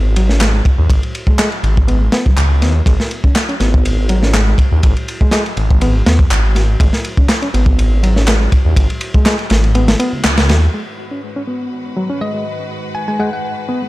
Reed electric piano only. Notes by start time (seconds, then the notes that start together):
Already playing: B3
0.16 F#3
0.29 C#4
0.41 G#3
0.54 G#3
1.28 G#3
1.39 G#3
1.88 B3
2.01 G#3
2.13 B3
2.26 F#3
2.62 B3
2.86 G#3
3.24 C#4
3.49 C#4
3.60 B3
4.10 F#3
4.23 C#4
4.34 G#3
4.47 G#3
5.21 G#3
5.33 G#3
5.82 B3
5.95 G#3
6.07 B3
6.56 F#4
6.80 G#3
7.18 C#4
7.42 C#4
7.54 B3
8.03 F#3
8.16 C#4
8.28 G#3
8.41 G#3
9.15 G#3
9.26 G#3
9.75 B3
9.88 G#3
10.00 B3
10.49 F#4
10.74 G#3
11.11 C#4
11.36 C#4
11.47 B3
11.97 F#3
12.10 C#4
12.21 G#3
12.35 G#3
13.08 G#3
13.20 G#3
13.69 B3
13.82 G#3